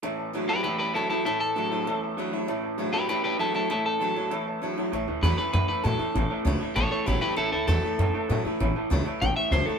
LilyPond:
<<
  \new Staff \with { instrumentName = "Upright piano" } { \time 4/4 \key a \major \tempo 4 = 196 <cis'' e'' a''>8 <cis'' e'' a''>8 <cis'' e'' a''>8 <cis'' a''>8 <cis'' e'' fis''>8 <cis'' e'' a''>8 <cis'' a''>8 <cis'' e'' a''>8 | <cis'' e'' a''>8 <cis'' e''>8 <cis'' e'' a''>8 <cis'' e'' a''>8 <cis'' e'' a''>8 <cis'' e'' a''>8 <cis'' e'' a''>8 <cis'' e'' a''>8 | <cis'' e'' a''>8 <cis'' e'' a''>8 <cis'' e'' a''>8 <cis'' e'' a''>8 <cis'' e'' b''>8 <cis'' e'' a''>8 <cis'' e'' b''>8 <cis'' e'' a''>8 | <cis'' e'' a''>8 e''8 <cis'' e'' a''>8 <cis'' e''>8 <cis'' e'' b''>8 <cis'' e'' a''>8 <cis'' e'' a''>8 <cis'' e'' a''>8 |
<cis'' e'' a''>8 <cis'' e'' a''>8 a''8 <cis'' e'' a''>8 <cis'' e'' fis''>8 <e'' a''>8 <cis'' e'' a''>8 <cis'' e'' a''>8 | <cis'' e'' a''>8 <cis'' e'' a''>8 <cis'' e'' a''>8 <cis'' e'' a''>8 <cis'' e'' a''>8 <cis'' e'' a''>8 <cis'' e'' fis''>8 <e'' a''>8 | <cis'' e'' a''>8 <cis'' e'' a''>8 <e'' a''>8 <cis'' e'' a''>8 <cis'' e'' a''>8 <cis'' e'' a''>8 <cis'' e'' a''>8 <cis'' e'' a''>8 | <cis'' e'' b''>8 <cis'' e'' a''>8 <cis'' e'' a''>8 <cis'' e'' a''>8 <cis'' e'' a''>8 <cis'' e'' a''>8 <cis'' e'' a''>8 <cis'' e'' a''>8 | }
  \new Staff \with { instrumentName = "Clean electric guitar" } { \time 4/4 \key a \major r4. <g' b'>8 <g' b'>8 <g' b'>8 <e' a'>8 <e' a'>8 | <e' a'>8 a'2 r4. | r4. <g' b'>8 <g' b'>8 <g' b'>8 <e' a'>8 <e' a'>8 | <e' a'>8 a'2 r4. |
r4 b'8 b'8 b'8 b'8 a'4~ | a'4 r4 <a' cis''>8 <a' cis''>8 <g' b'>8 <g' b'>8 | <e' a'>8 <e' a'>8 a'2. | r2 g''8 e''8 c''8 a'8 | }
  \new Staff \with { instrumentName = "Steel-string acoustic guitar" } { \time 4/4 \key a \major << { r4 <e a cis' e'>8 <cis' e'>8 r4 <e a cis' e'>8 <cis' e'>8 | r4 <e a cis' e'>8 <cis' e'>8 r4 <e a cis' e'>8 <cis' e'>8 | r4 <e a cis' e'>8 <cis' e'>8 r4 <e a cis' e'>8 <cis' e'>8 | r4 <e a cis' e'>8 <cis' e'>8 r4 <e a cis' e'>8 <cis' e'>8 |
r4 <e a cis' e'>8 <cis' e'>8 r4 <e a cis' e'>8 <cis' e'>8 | r4 <e a cis' e'>8 <cis' e'>8 r4 <e a cis' e'>8 <cis' e'>8 | r4 <e a cis' e'>8 <cis' e'>8 r4 <e a cis' e'>8 <cis' e'>8 | r4 <e a cis' e'>8 <cis' e'>8 r4 <e a cis' e'>8 <cis' e'>8 | } \\ { a,2 e,2 | a,2 e,2 | a,2 e,2 | a,2 e,2 |
a,2 e,2 | a,2 e,2 | a,2 e,2 | a,2 e,2 | } >> }
  \new Staff \with { instrumentName = "Clean electric guitar" } { \clef bass \time 4/4 \key a \major <a, e>4 <a, fis>8 <a, fis>8 <a, e>4 <a, fis>8 <a, fis>8 | <a, e>4 <a, fis>8 <a, fis>8 <a, e>4 <a, fis>8 <a, fis>8 | <a, e>4 <a, fis>8 <a, fis>8 <a, e>4 <a, fis>8 <a, fis>8 | <a, e>4 <a, fis>8 <a, fis>8 <a, e>4 <a, fis>8 <a, fis>8 |
<a, e>8 <a, e>8 <a, fis>8 <a, e>8 <a, e>8 <a, e>8 <a, fis>8 <a, e>8 | <a, e>8 <a, e>8 <a, fis>8 <a, e>8 <a, e>8 <a, e>8 <a, fis>8 <a, e>8 | <a, e>8 <a, e>8 <a, fis>8 <a, e>8 <a, e>8 <a, e>8 <a, fis>8 <a, e>8 | <a, e>8 <a, e>8 <a, fis>8 <a, e>8 <a, e>8 <a, e>8 <a, fis>8 <a, e>8 | }
  \new Staff \with { instrumentName = "Upright bass" } { \clef bass \time 4/4 \key a \major r1 | r1 | r1 | r1 |
a,,8 d,8 e,8 r8 fis,8 r8 a,8 r8 | a,,8 r8 cis,8 r8 a,,8 r8 a,,8 r8 | a,,8 d,8 e,8 r8 fis,8 r8 a,8 r8 | a,,8 r8 cis,8 r8 a,,8 r8 cis,8 r8 | }
>>